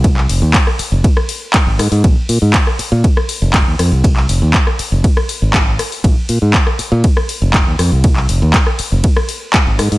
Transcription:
<<
  \new Staff \with { instrumentName = "Fingered electric bass" } { \clef bass \time 4/4 \key f \phrygian \tempo 4 = 120 c,8 f,,16 ees,16 r8. f,,16 r4 r16 aes,,16 aes,16 aes,16 | bes,,16 r16 bes,16 aes,16 r8. bes,16 r8. f,,8 ees,16 f,16 c,16~ | c,8 f,,16 ees,16 r8. f,,16 r8. aes,,8. r8 | bes,,16 r16 bes,16 aes,16 r8. bes,16 r8. f,,8 ees,16 f,16 c,16~ |
c,8 f,,16 ees,16 r8. f,,16 r4 r16 aes,,16 aes,16 aes,16 | }
  \new DrumStaff \with { instrumentName = "Drums" } \drummode { \time 4/4 <bd cymr>16 hc16 hho8 <hc bd cymr>16 ss16 hho8 <bd cymr>16 ss16 hho8 <hc bd cymr>8 <hho ss>16 hho16 | <bd cymr>8 hho8 <hc bd cymr>16 ss16 hho8 <bd cymr>16 ss16 hho8 <hc bd cymr>8 <hho ss>8 | <bd cymr>16 hc16 hho8 <hc bd cymr>16 ss16 hho8 <bd cymr>16 ss16 hho8 <hc bd cymr>8 <hho ss>16 hho16 | <bd cymr>8 hho8 <hc bd cymr>16 ss16 hho8 <bd cymr>16 ss16 hho8 <hc bd cymr>8 <hho ss>8 |
<bd cymr>16 hc16 hho8 <hc bd cymr>16 ss16 hho8 <bd cymr>16 ss16 hho8 <hc bd cymr>8 <hho ss>16 hho16 | }
>>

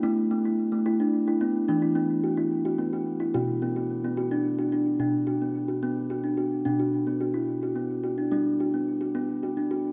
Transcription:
<<
  \new Staff \with { instrumentName = "Kalimba" } { \time 6/8 \key b \minor \tempo 4. = 72 e'8 a16 e'8 a16 e'16 d'8 e'16 b8 | d'16 e'16 b8 fis'16 e'8 fis'16 b16 fis'8 e'16 | fis'8 b16 fis'8 b16 fis'16 d'8 fis'16 d'8 | d'8 fis'16 b8 fis'16 b8 fis'16 d'16 fis'8 |
d'16 fis'8 b16 fis'16 e'8 fis'16 b8 fis'16 d'16 | d'8 fis'16 b8 fis'16 b8 fis'16 d'16 fis'8 | }
  \new Staff \with { instrumentName = "Kalimba" } { \clef bass \time 6/8 \key b \minor a2. | e2. | b,2. | b,2. |
b,2. | g2. | }
>>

